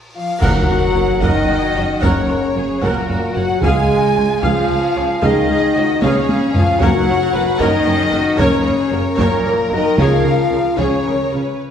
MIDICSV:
0, 0, Header, 1, 14, 480
1, 0, Start_track
1, 0, Key_signature, 6, "major"
1, 0, Tempo, 532387
1, 386, Time_signature, 6, 3, 24, 8
1, 10555, End_track
2, 0, Start_track
2, 0, Title_t, "Flute"
2, 0, Program_c, 0, 73
2, 136, Note_on_c, 0, 77, 76
2, 371, Note_on_c, 0, 78, 107
2, 385, Note_off_c, 0, 77, 0
2, 1110, Note_on_c, 0, 75, 106
2, 1123, Note_off_c, 0, 78, 0
2, 1828, Note_off_c, 0, 75, 0
2, 1833, Note_on_c, 0, 73, 88
2, 2542, Note_off_c, 0, 73, 0
2, 2579, Note_on_c, 0, 70, 88
2, 3031, Note_off_c, 0, 70, 0
2, 3037, Note_on_c, 0, 78, 96
2, 3259, Note_off_c, 0, 78, 0
2, 3264, Note_on_c, 0, 80, 112
2, 3994, Note_on_c, 0, 77, 102
2, 4007, Note_off_c, 0, 80, 0
2, 4710, Note_off_c, 0, 77, 0
2, 4723, Note_on_c, 0, 75, 109
2, 5424, Note_on_c, 0, 73, 97
2, 5438, Note_off_c, 0, 75, 0
2, 5879, Note_off_c, 0, 73, 0
2, 5884, Note_on_c, 0, 77, 102
2, 6120, Note_on_c, 0, 78, 109
2, 6133, Note_off_c, 0, 77, 0
2, 6594, Note_off_c, 0, 78, 0
2, 6843, Note_on_c, 0, 75, 121
2, 7562, Note_on_c, 0, 73, 96
2, 7576, Note_off_c, 0, 75, 0
2, 8283, Note_off_c, 0, 73, 0
2, 8288, Note_on_c, 0, 70, 97
2, 8754, Note_off_c, 0, 70, 0
2, 8767, Note_on_c, 0, 75, 99
2, 8999, Note_off_c, 0, 75, 0
2, 9017, Note_on_c, 0, 77, 101
2, 9718, Note_off_c, 0, 77, 0
2, 9735, Note_on_c, 0, 73, 97
2, 10446, Note_off_c, 0, 73, 0
2, 10555, End_track
3, 0, Start_track
3, 0, Title_t, "Violin section"
3, 0, Program_c, 1, 48
3, 140, Note_on_c, 1, 77, 72
3, 364, Note_on_c, 1, 78, 101
3, 368, Note_off_c, 1, 77, 0
3, 1086, Note_on_c, 1, 75, 109
3, 1101, Note_off_c, 1, 78, 0
3, 1807, Note_off_c, 1, 75, 0
3, 1812, Note_on_c, 1, 73, 88
3, 2540, Note_on_c, 1, 70, 89
3, 2545, Note_off_c, 1, 73, 0
3, 3017, Note_on_c, 1, 78, 91
3, 3027, Note_off_c, 1, 70, 0
3, 3252, Note_on_c, 1, 80, 101
3, 3265, Note_off_c, 1, 78, 0
3, 3977, Note_on_c, 1, 77, 105
3, 3981, Note_off_c, 1, 80, 0
3, 4701, Note_off_c, 1, 77, 0
3, 4725, Note_on_c, 1, 75, 100
3, 5419, Note_off_c, 1, 75, 0
3, 5433, Note_on_c, 1, 73, 96
3, 5903, Note_on_c, 1, 77, 98
3, 5904, Note_off_c, 1, 73, 0
3, 6123, Note_on_c, 1, 78, 114
3, 6141, Note_off_c, 1, 77, 0
3, 6831, Note_off_c, 1, 78, 0
3, 6862, Note_on_c, 1, 75, 124
3, 7557, Note_on_c, 1, 73, 101
3, 7573, Note_off_c, 1, 75, 0
3, 8280, Note_off_c, 1, 73, 0
3, 8290, Note_on_c, 1, 70, 98
3, 8764, Note_off_c, 1, 70, 0
3, 8781, Note_on_c, 1, 75, 96
3, 9011, Note_off_c, 1, 75, 0
3, 9017, Note_on_c, 1, 77, 95
3, 9718, Note_off_c, 1, 77, 0
3, 9732, Note_on_c, 1, 73, 91
3, 10459, Note_off_c, 1, 73, 0
3, 10555, End_track
4, 0, Start_track
4, 0, Title_t, "Viola section"
4, 0, Program_c, 2, 48
4, 377, Note_on_c, 2, 70, 108
4, 379, Note_on_c, 2, 78, 86
4, 607, Note_off_c, 2, 70, 0
4, 608, Note_off_c, 2, 78, 0
4, 623, Note_on_c, 2, 70, 68
4, 623, Note_on_c, 2, 78, 56
4, 695, Note_off_c, 2, 70, 0
4, 695, Note_off_c, 2, 78, 0
4, 862, Note_on_c, 2, 66, 62
4, 862, Note_on_c, 2, 73, 63
4, 934, Note_off_c, 2, 66, 0
4, 934, Note_off_c, 2, 73, 0
4, 1098, Note_on_c, 2, 70, 92
4, 1100, Note_on_c, 2, 78, 87
4, 1329, Note_off_c, 2, 70, 0
4, 1330, Note_off_c, 2, 78, 0
4, 1340, Note_on_c, 2, 78, 65
4, 1346, Note_on_c, 2, 70, 71
4, 1412, Note_off_c, 2, 78, 0
4, 1418, Note_off_c, 2, 70, 0
4, 1583, Note_on_c, 2, 66, 71
4, 1583, Note_on_c, 2, 73, 79
4, 1655, Note_off_c, 2, 73, 0
4, 1656, Note_off_c, 2, 66, 0
4, 1824, Note_on_c, 2, 78, 97
4, 1831, Note_on_c, 2, 70, 101
4, 2053, Note_off_c, 2, 78, 0
4, 2057, Note_off_c, 2, 70, 0
4, 2077, Note_on_c, 2, 70, 59
4, 2079, Note_on_c, 2, 78, 54
4, 2150, Note_off_c, 2, 70, 0
4, 2151, Note_off_c, 2, 78, 0
4, 2307, Note_on_c, 2, 73, 72
4, 2312, Note_on_c, 2, 66, 63
4, 2379, Note_off_c, 2, 73, 0
4, 2384, Note_off_c, 2, 66, 0
4, 2553, Note_on_c, 2, 70, 91
4, 2554, Note_on_c, 2, 78, 80
4, 2778, Note_off_c, 2, 70, 0
4, 2778, Note_off_c, 2, 78, 0
4, 2800, Note_on_c, 2, 78, 75
4, 2803, Note_on_c, 2, 70, 68
4, 2872, Note_off_c, 2, 78, 0
4, 2875, Note_off_c, 2, 70, 0
4, 3038, Note_on_c, 2, 73, 72
4, 3045, Note_on_c, 2, 66, 81
4, 3110, Note_off_c, 2, 73, 0
4, 3117, Note_off_c, 2, 66, 0
4, 3279, Note_on_c, 2, 68, 102
4, 3281, Note_on_c, 2, 77, 94
4, 3499, Note_off_c, 2, 68, 0
4, 3500, Note_off_c, 2, 77, 0
4, 3512, Note_on_c, 2, 77, 57
4, 3513, Note_on_c, 2, 68, 61
4, 3584, Note_off_c, 2, 77, 0
4, 3585, Note_off_c, 2, 68, 0
4, 3746, Note_on_c, 2, 65, 66
4, 3749, Note_on_c, 2, 73, 63
4, 3818, Note_off_c, 2, 65, 0
4, 3822, Note_off_c, 2, 73, 0
4, 3991, Note_on_c, 2, 68, 92
4, 3992, Note_on_c, 2, 77, 91
4, 4214, Note_off_c, 2, 68, 0
4, 4215, Note_off_c, 2, 77, 0
4, 4227, Note_on_c, 2, 77, 76
4, 4231, Note_on_c, 2, 68, 74
4, 4299, Note_off_c, 2, 77, 0
4, 4303, Note_off_c, 2, 68, 0
4, 4472, Note_on_c, 2, 65, 81
4, 4474, Note_on_c, 2, 73, 76
4, 4544, Note_off_c, 2, 65, 0
4, 4546, Note_off_c, 2, 73, 0
4, 4702, Note_on_c, 2, 68, 107
4, 4706, Note_on_c, 2, 77, 90
4, 4927, Note_off_c, 2, 68, 0
4, 4929, Note_off_c, 2, 77, 0
4, 4953, Note_on_c, 2, 77, 68
4, 4960, Note_on_c, 2, 68, 70
4, 5025, Note_off_c, 2, 77, 0
4, 5032, Note_off_c, 2, 68, 0
4, 5202, Note_on_c, 2, 73, 76
4, 5205, Note_on_c, 2, 65, 73
4, 5274, Note_off_c, 2, 73, 0
4, 5277, Note_off_c, 2, 65, 0
4, 5437, Note_on_c, 2, 68, 110
4, 5437, Note_on_c, 2, 77, 91
4, 5652, Note_off_c, 2, 68, 0
4, 5652, Note_off_c, 2, 77, 0
4, 5674, Note_on_c, 2, 77, 80
4, 5678, Note_on_c, 2, 68, 76
4, 5746, Note_off_c, 2, 77, 0
4, 5750, Note_off_c, 2, 68, 0
4, 5920, Note_on_c, 2, 65, 78
4, 5925, Note_on_c, 2, 73, 80
4, 5992, Note_off_c, 2, 65, 0
4, 5997, Note_off_c, 2, 73, 0
4, 6146, Note_on_c, 2, 70, 94
4, 6151, Note_on_c, 2, 73, 108
4, 6365, Note_off_c, 2, 70, 0
4, 6367, Note_off_c, 2, 73, 0
4, 6393, Note_on_c, 2, 73, 66
4, 6399, Note_on_c, 2, 70, 73
4, 6466, Note_off_c, 2, 73, 0
4, 6471, Note_off_c, 2, 70, 0
4, 6622, Note_on_c, 2, 66, 75
4, 6623, Note_on_c, 2, 70, 81
4, 6694, Note_off_c, 2, 66, 0
4, 6695, Note_off_c, 2, 70, 0
4, 6837, Note_on_c, 2, 70, 111
4, 6840, Note_on_c, 2, 73, 98
4, 7066, Note_off_c, 2, 70, 0
4, 7068, Note_off_c, 2, 73, 0
4, 7077, Note_on_c, 2, 73, 81
4, 7079, Note_on_c, 2, 70, 79
4, 7149, Note_off_c, 2, 73, 0
4, 7151, Note_off_c, 2, 70, 0
4, 7308, Note_on_c, 2, 70, 84
4, 7310, Note_on_c, 2, 66, 88
4, 7380, Note_off_c, 2, 70, 0
4, 7382, Note_off_c, 2, 66, 0
4, 7560, Note_on_c, 2, 70, 106
4, 7565, Note_on_c, 2, 73, 119
4, 7787, Note_off_c, 2, 70, 0
4, 7790, Note_off_c, 2, 73, 0
4, 7803, Note_on_c, 2, 70, 73
4, 7803, Note_on_c, 2, 73, 74
4, 7875, Note_off_c, 2, 70, 0
4, 7875, Note_off_c, 2, 73, 0
4, 8044, Note_on_c, 2, 66, 86
4, 8045, Note_on_c, 2, 70, 81
4, 8116, Note_off_c, 2, 66, 0
4, 8117, Note_off_c, 2, 70, 0
4, 8284, Note_on_c, 2, 70, 104
4, 8286, Note_on_c, 2, 73, 108
4, 8506, Note_off_c, 2, 70, 0
4, 8507, Note_off_c, 2, 73, 0
4, 8522, Note_on_c, 2, 70, 88
4, 8524, Note_on_c, 2, 73, 93
4, 8595, Note_off_c, 2, 70, 0
4, 8596, Note_off_c, 2, 73, 0
4, 8772, Note_on_c, 2, 66, 83
4, 8772, Note_on_c, 2, 70, 76
4, 8844, Note_off_c, 2, 66, 0
4, 8844, Note_off_c, 2, 70, 0
4, 9012, Note_on_c, 2, 73, 100
4, 9015, Note_on_c, 2, 68, 108
4, 9231, Note_off_c, 2, 73, 0
4, 9232, Note_off_c, 2, 68, 0
4, 9247, Note_on_c, 2, 68, 69
4, 9247, Note_on_c, 2, 73, 67
4, 9319, Note_off_c, 2, 68, 0
4, 9319, Note_off_c, 2, 73, 0
4, 9488, Note_on_c, 2, 65, 64
4, 9489, Note_on_c, 2, 68, 73
4, 9560, Note_off_c, 2, 65, 0
4, 9561, Note_off_c, 2, 68, 0
4, 9721, Note_on_c, 2, 73, 84
4, 9724, Note_on_c, 2, 68, 95
4, 9948, Note_off_c, 2, 73, 0
4, 9950, Note_off_c, 2, 68, 0
4, 9964, Note_on_c, 2, 68, 70
4, 9967, Note_on_c, 2, 73, 66
4, 10036, Note_off_c, 2, 68, 0
4, 10039, Note_off_c, 2, 73, 0
4, 10211, Note_on_c, 2, 68, 72
4, 10215, Note_on_c, 2, 65, 67
4, 10283, Note_off_c, 2, 68, 0
4, 10287, Note_off_c, 2, 65, 0
4, 10555, End_track
5, 0, Start_track
5, 0, Title_t, "Violin section"
5, 0, Program_c, 3, 48
5, 378, Note_on_c, 3, 70, 93
5, 1072, Note_off_c, 3, 70, 0
5, 1103, Note_on_c, 3, 66, 90
5, 1827, Note_on_c, 3, 73, 88
5, 1830, Note_off_c, 3, 66, 0
5, 2070, Note_on_c, 3, 70, 90
5, 2072, Note_off_c, 3, 73, 0
5, 2314, Note_off_c, 3, 70, 0
5, 2319, Note_on_c, 3, 68, 78
5, 2556, Note_on_c, 3, 66, 89
5, 2558, Note_off_c, 3, 68, 0
5, 3264, Note_on_c, 3, 65, 82
5, 3274, Note_off_c, 3, 66, 0
5, 3987, Note_off_c, 3, 65, 0
5, 3990, Note_on_c, 3, 68, 93
5, 4693, Note_off_c, 3, 68, 0
5, 4700, Note_on_c, 3, 70, 84
5, 4935, Note_on_c, 3, 68, 97
5, 4938, Note_off_c, 3, 70, 0
5, 5175, Note_off_c, 3, 68, 0
5, 5178, Note_on_c, 3, 66, 86
5, 5420, Note_off_c, 3, 66, 0
5, 5421, Note_on_c, 3, 68, 98
5, 6123, Note_off_c, 3, 68, 0
5, 6140, Note_on_c, 3, 70, 98
5, 6371, Note_on_c, 3, 73, 106
5, 6379, Note_off_c, 3, 70, 0
5, 6613, Note_off_c, 3, 73, 0
5, 6613, Note_on_c, 3, 71, 97
5, 6852, Note_off_c, 3, 71, 0
5, 6855, Note_on_c, 3, 70, 103
5, 7089, Note_on_c, 3, 68, 95
5, 7092, Note_off_c, 3, 70, 0
5, 7321, Note_on_c, 3, 66, 98
5, 7329, Note_off_c, 3, 68, 0
5, 7546, Note_on_c, 3, 70, 104
5, 7560, Note_off_c, 3, 66, 0
5, 7792, Note_on_c, 3, 68, 96
5, 7797, Note_off_c, 3, 70, 0
5, 8027, Note_on_c, 3, 70, 116
5, 8039, Note_off_c, 3, 68, 0
5, 9712, Note_on_c, 3, 68, 80
5, 9714, Note_off_c, 3, 70, 0
5, 9956, Note_off_c, 3, 68, 0
5, 9961, Note_on_c, 3, 70, 82
5, 10208, Note_off_c, 3, 70, 0
5, 10212, Note_on_c, 3, 71, 73
5, 10456, Note_off_c, 3, 71, 0
5, 10555, End_track
6, 0, Start_track
6, 0, Title_t, "French horn section"
6, 0, Program_c, 4, 60
6, 144, Note_on_c, 4, 65, 81
6, 370, Note_off_c, 4, 65, 0
6, 385, Note_on_c, 4, 66, 108
6, 1111, Note_off_c, 4, 66, 0
6, 1124, Note_on_c, 4, 63, 114
6, 1840, Note_off_c, 4, 63, 0
6, 1851, Note_on_c, 4, 61, 92
6, 2535, Note_on_c, 4, 58, 98
6, 2565, Note_off_c, 4, 61, 0
6, 2988, Note_on_c, 4, 66, 98
6, 3025, Note_off_c, 4, 58, 0
6, 3251, Note_off_c, 4, 66, 0
6, 3255, Note_on_c, 4, 68, 111
6, 3968, Note_off_c, 4, 68, 0
6, 3992, Note_on_c, 4, 65, 109
6, 4694, Note_off_c, 4, 65, 0
6, 4716, Note_on_c, 4, 63, 114
6, 5414, Note_off_c, 4, 63, 0
6, 5440, Note_on_c, 4, 61, 124
6, 5904, Note_on_c, 4, 65, 126
6, 5908, Note_off_c, 4, 61, 0
6, 6136, Note_on_c, 4, 66, 124
6, 6141, Note_off_c, 4, 65, 0
6, 6837, Note_off_c, 4, 66, 0
6, 6856, Note_on_c, 4, 63, 127
6, 7556, Note_off_c, 4, 63, 0
6, 7564, Note_on_c, 4, 61, 108
6, 8283, Note_off_c, 4, 61, 0
6, 8307, Note_on_c, 4, 58, 119
6, 8773, Note_off_c, 4, 58, 0
6, 8781, Note_on_c, 4, 63, 118
6, 9011, Note_off_c, 4, 63, 0
6, 9027, Note_on_c, 4, 65, 112
6, 9716, Note_on_c, 4, 61, 106
6, 9737, Note_off_c, 4, 65, 0
6, 10451, Note_off_c, 4, 61, 0
6, 10555, End_track
7, 0, Start_track
7, 0, Title_t, "Trombone section"
7, 0, Program_c, 5, 61
7, 151, Note_on_c, 5, 53, 77
7, 374, Note_off_c, 5, 53, 0
7, 380, Note_on_c, 5, 54, 113
7, 1106, Note_on_c, 5, 51, 116
7, 1109, Note_off_c, 5, 54, 0
7, 1831, Note_off_c, 5, 51, 0
7, 1834, Note_on_c, 5, 49, 81
7, 2542, Note_off_c, 5, 49, 0
7, 2558, Note_on_c, 5, 46, 98
7, 3023, Note_on_c, 5, 54, 94
7, 3027, Note_off_c, 5, 46, 0
7, 3268, Note_off_c, 5, 54, 0
7, 3275, Note_on_c, 5, 56, 108
7, 3978, Note_off_c, 5, 56, 0
7, 3987, Note_on_c, 5, 53, 115
7, 4692, Note_off_c, 5, 53, 0
7, 4707, Note_on_c, 5, 51, 110
7, 5424, Note_off_c, 5, 51, 0
7, 5431, Note_on_c, 5, 49, 107
7, 5894, Note_off_c, 5, 49, 0
7, 5898, Note_on_c, 5, 53, 98
7, 6135, Note_on_c, 5, 54, 117
7, 6138, Note_off_c, 5, 53, 0
7, 6837, Note_off_c, 5, 54, 0
7, 6856, Note_on_c, 5, 51, 127
7, 7560, Note_on_c, 5, 49, 104
7, 7570, Note_off_c, 5, 51, 0
7, 8149, Note_off_c, 5, 49, 0
7, 8302, Note_on_c, 5, 46, 117
7, 8755, Note_on_c, 5, 51, 108
7, 8761, Note_off_c, 5, 46, 0
7, 8998, Note_off_c, 5, 51, 0
7, 9003, Note_on_c, 5, 53, 100
7, 9711, Note_off_c, 5, 53, 0
7, 9723, Note_on_c, 5, 49, 100
7, 10440, Note_off_c, 5, 49, 0
7, 10555, End_track
8, 0, Start_track
8, 0, Title_t, "Timpani"
8, 0, Program_c, 6, 47
8, 372, Note_on_c, 6, 42, 121
8, 1069, Note_off_c, 6, 42, 0
8, 3257, Note_on_c, 6, 49, 111
8, 3948, Note_off_c, 6, 49, 0
8, 6139, Note_on_c, 6, 42, 119
8, 6817, Note_off_c, 6, 42, 0
8, 8994, Note_on_c, 6, 49, 105
8, 9684, Note_off_c, 6, 49, 0
8, 10555, End_track
9, 0, Start_track
9, 0, Title_t, "Cello section"
9, 0, Program_c, 7, 48
9, 384, Note_on_c, 7, 42, 100
9, 456, Note_off_c, 7, 42, 0
9, 621, Note_on_c, 7, 42, 68
9, 693, Note_off_c, 7, 42, 0
9, 866, Note_on_c, 7, 42, 68
9, 939, Note_off_c, 7, 42, 0
9, 1100, Note_on_c, 7, 42, 99
9, 1172, Note_off_c, 7, 42, 0
9, 1350, Note_on_c, 7, 42, 70
9, 1422, Note_off_c, 7, 42, 0
9, 1584, Note_on_c, 7, 42, 69
9, 1656, Note_off_c, 7, 42, 0
9, 1829, Note_on_c, 7, 42, 97
9, 1901, Note_off_c, 7, 42, 0
9, 2068, Note_on_c, 7, 42, 61
9, 2140, Note_off_c, 7, 42, 0
9, 2303, Note_on_c, 7, 42, 69
9, 2375, Note_off_c, 7, 42, 0
9, 2545, Note_on_c, 7, 42, 92
9, 2617, Note_off_c, 7, 42, 0
9, 2782, Note_on_c, 7, 42, 70
9, 2854, Note_off_c, 7, 42, 0
9, 3024, Note_on_c, 7, 42, 68
9, 3096, Note_off_c, 7, 42, 0
9, 3270, Note_on_c, 7, 37, 98
9, 3342, Note_off_c, 7, 37, 0
9, 3517, Note_on_c, 7, 37, 65
9, 3589, Note_off_c, 7, 37, 0
9, 3760, Note_on_c, 7, 37, 73
9, 3832, Note_off_c, 7, 37, 0
9, 3994, Note_on_c, 7, 37, 95
9, 4066, Note_off_c, 7, 37, 0
9, 4235, Note_on_c, 7, 37, 70
9, 4307, Note_off_c, 7, 37, 0
9, 4474, Note_on_c, 7, 37, 72
9, 4547, Note_off_c, 7, 37, 0
9, 4718, Note_on_c, 7, 37, 103
9, 4790, Note_off_c, 7, 37, 0
9, 4956, Note_on_c, 7, 37, 70
9, 5028, Note_off_c, 7, 37, 0
9, 5197, Note_on_c, 7, 37, 74
9, 5269, Note_off_c, 7, 37, 0
9, 5433, Note_on_c, 7, 37, 109
9, 5505, Note_off_c, 7, 37, 0
9, 5668, Note_on_c, 7, 37, 82
9, 5740, Note_off_c, 7, 37, 0
9, 5912, Note_on_c, 7, 37, 78
9, 5984, Note_off_c, 7, 37, 0
9, 6149, Note_on_c, 7, 42, 107
9, 6221, Note_off_c, 7, 42, 0
9, 6389, Note_on_c, 7, 42, 74
9, 6461, Note_off_c, 7, 42, 0
9, 6618, Note_on_c, 7, 42, 81
9, 6690, Note_off_c, 7, 42, 0
9, 6853, Note_on_c, 7, 42, 115
9, 6925, Note_off_c, 7, 42, 0
9, 7089, Note_on_c, 7, 42, 87
9, 7161, Note_off_c, 7, 42, 0
9, 7324, Note_on_c, 7, 42, 81
9, 7396, Note_off_c, 7, 42, 0
9, 7568, Note_on_c, 7, 42, 120
9, 7640, Note_off_c, 7, 42, 0
9, 7805, Note_on_c, 7, 42, 77
9, 7877, Note_off_c, 7, 42, 0
9, 8038, Note_on_c, 7, 42, 80
9, 8110, Note_off_c, 7, 42, 0
9, 8289, Note_on_c, 7, 42, 104
9, 8361, Note_off_c, 7, 42, 0
9, 8521, Note_on_c, 7, 42, 83
9, 8593, Note_off_c, 7, 42, 0
9, 8753, Note_on_c, 7, 42, 77
9, 8825, Note_off_c, 7, 42, 0
9, 8999, Note_on_c, 7, 49, 108
9, 9072, Note_off_c, 7, 49, 0
9, 9244, Note_on_c, 7, 49, 71
9, 9316, Note_off_c, 7, 49, 0
9, 9479, Note_on_c, 7, 49, 72
9, 9551, Note_off_c, 7, 49, 0
9, 9725, Note_on_c, 7, 49, 91
9, 9797, Note_off_c, 7, 49, 0
9, 9971, Note_on_c, 7, 49, 66
9, 10043, Note_off_c, 7, 49, 0
9, 10220, Note_on_c, 7, 49, 58
9, 10293, Note_off_c, 7, 49, 0
9, 10555, End_track
10, 0, Start_track
10, 0, Title_t, "Double bass section"
10, 0, Program_c, 8, 48
10, 377, Note_on_c, 8, 30, 92
10, 449, Note_off_c, 8, 30, 0
10, 623, Note_on_c, 8, 30, 68
10, 695, Note_off_c, 8, 30, 0
10, 859, Note_on_c, 8, 30, 66
10, 932, Note_off_c, 8, 30, 0
10, 1098, Note_on_c, 8, 30, 102
10, 1170, Note_off_c, 8, 30, 0
10, 1347, Note_on_c, 8, 30, 64
10, 1419, Note_off_c, 8, 30, 0
10, 1587, Note_on_c, 8, 30, 67
10, 1659, Note_off_c, 8, 30, 0
10, 1822, Note_on_c, 8, 30, 100
10, 1894, Note_off_c, 8, 30, 0
10, 2074, Note_on_c, 8, 30, 63
10, 2146, Note_off_c, 8, 30, 0
10, 2319, Note_on_c, 8, 30, 63
10, 2391, Note_off_c, 8, 30, 0
10, 2547, Note_on_c, 8, 30, 95
10, 2619, Note_off_c, 8, 30, 0
10, 2789, Note_on_c, 8, 30, 67
10, 2861, Note_off_c, 8, 30, 0
10, 3030, Note_on_c, 8, 30, 69
10, 3102, Note_off_c, 8, 30, 0
10, 3262, Note_on_c, 8, 37, 92
10, 3334, Note_off_c, 8, 37, 0
10, 3509, Note_on_c, 8, 37, 67
10, 3582, Note_off_c, 8, 37, 0
10, 3751, Note_on_c, 8, 37, 69
10, 3824, Note_off_c, 8, 37, 0
10, 3994, Note_on_c, 8, 37, 97
10, 4066, Note_off_c, 8, 37, 0
10, 4238, Note_on_c, 8, 37, 66
10, 4310, Note_off_c, 8, 37, 0
10, 4471, Note_on_c, 8, 37, 69
10, 4544, Note_off_c, 8, 37, 0
10, 4713, Note_on_c, 8, 37, 102
10, 4785, Note_off_c, 8, 37, 0
10, 4955, Note_on_c, 8, 37, 71
10, 5028, Note_off_c, 8, 37, 0
10, 5192, Note_on_c, 8, 37, 68
10, 5264, Note_off_c, 8, 37, 0
10, 5434, Note_on_c, 8, 37, 99
10, 5507, Note_off_c, 8, 37, 0
10, 5673, Note_on_c, 8, 37, 67
10, 5745, Note_off_c, 8, 37, 0
10, 5907, Note_on_c, 8, 37, 75
10, 5979, Note_off_c, 8, 37, 0
10, 6152, Note_on_c, 8, 30, 103
10, 6224, Note_off_c, 8, 30, 0
10, 6381, Note_on_c, 8, 30, 78
10, 6453, Note_off_c, 8, 30, 0
10, 6627, Note_on_c, 8, 30, 80
10, 6699, Note_off_c, 8, 30, 0
10, 6867, Note_on_c, 8, 30, 110
10, 6939, Note_off_c, 8, 30, 0
10, 7096, Note_on_c, 8, 30, 72
10, 7169, Note_off_c, 8, 30, 0
10, 7327, Note_on_c, 8, 30, 79
10, 7399, Note_off_c, 8, 30, 0
10, 7568, Note_on_c, 8, 30, 113
10, 7640, Note_off_c, 8, 30, 0
10, 7804, Note_on_c, 8, 30, 78
10, 7877, Note_off_c, 8, 30, 0
10, 8042, Note_on_c, 8, 30, 82
10, 8114, Note_off_c, 8, 30, 0
10, 8281, Note_on_c, 8, 30, 116
10, 8353, Note_off_c, 8, 30, 0
10, 8519, Note_on_c, 8, 30, 67
10, 8591, Note_off_c, 8, 30, 0
10, 8757, Note_on_c, 8, 30, 75
10, 8829, Note_off_c, 8, 30, 0
10, 8991, Note_on_c, 8, 37, 100
10, 9063, Note_off_c, 8, 37, 0
10, 9246, Note_on_c, 8, 37, 75
10, 9318, Note_off_c, 8, 37, 0
10, 9480, Note_on_c, 8, 37, 67
10, 9552, Note_off_c, 8, 37, 0
10, 9729, Note_on_c, 8, 37, 96
10, 9802, Note_off_c, 8, 37, 0
10, 9967, Note_on_c, 8, 37, 59
10, 10039, Note_off_c, 8, 37, 0
10, 10208, Note_on_c, 8, 37, 57
10, 10280, Note_off_c, 8, 37, 0
10, 10555, End_track
11, 0, Start_track
11, 0, Title_t, "Cymbal swell"
11, 0, Program_c, 10, 119
11, 0, Note_on_c, 10, 60, 43
11, 382, Note_off_c, 10, 60, 0
11, 10555, End_track
12, 0, Start_track
12, 0, Title_t, "Sub drop"
12, 0, Program_c, 11, 103
12, 378, Note_on_c, 11, 60, 82
12, 1830, Note_off_c, 11, 60, 0
12, 10555, End_track
13, 0, Start_track
13, 0, Title_t, "Taiko and cinematic ensemble drums"
13, 379, Note_on_c, 9, 41, 114
13, 469, Note_off_c, 9, 41, 0
13, 1106, Note_on_c, 9, 41, 95
13, 1196, Note_off_c, 9, 41, 0
13, 1831, Note_on_c, 9, 41, 108
13, 1921, Note_off_c, 9, 41, 0
13, 2070, Note_on_c, 9, 37, 44
13, 2160, Note_off_c, 9, 37, 0
13, 2555, Note_on_c, 9, 41, 91
13, 2645, Note_off_c, 9, 41, 0
13, 3276, Note_on_c, 9, 41, 106
13, 3366, Note_off_c, 9, 41, 0
13, 3995, Note_on_c, 9, 41, 88
13, 4085, Note_off_c, 9, 41, 0
13, 4476, Note_on_c, 9, 37, 44
13, 4567, Note_off_c, 9, 37, 0
13, 4710, Note_on_c, 9, 41, 109
13, 4801, Note_off_c, 9, 41, 0
13, 5428, Note_on_c, 9, 48, 94
13, 5519, Note_off_c, 9, 48, 0
13, 5671, Note_on_c, 9, 48, 90
13, 5761, Note_off_c, 9, 48, 0
13, 5899, Note_on_c, 9, 43, 106
13, 5990, Note_off_c, 9, 43, 0
13, 6141, Note_on_c, 9, 41, 108
13, 6231, Note_off_c, 9, 41, 0
13, 6852, Note_on_c, 9, 41, 92
13, 6942, Note_off_c, 9, 41, 0
13, 7563, Note_on_c, 9, 41, 109
13, 7654, Note_off_c, 9, 41, 0
13, 8280, Note_on_c, 9, 41, 88
13, 8370, Note_off_c, 9, 41, 0
13, 8997, Note_on_c, 9, 41, 115
13, 9087, Note_off_c, 9, 41, 0
13, 9724, Note_on_c, 9, 41, 85
13, 9814, Note_off_c, 9, 41, 0
13, 10555, End_track
14, 0, Start_track
14, 0, Title_t, "Drums"
14, 385, Note_on_c, 9, 35, 84
14, 385, Note_on_c, 9, 49, 84
14, 475, Note_off_c, 9, 35, 0
14, 475, Note_off_c, 9, 49, 0
14, 10555, End_track
0, 0, End_of_file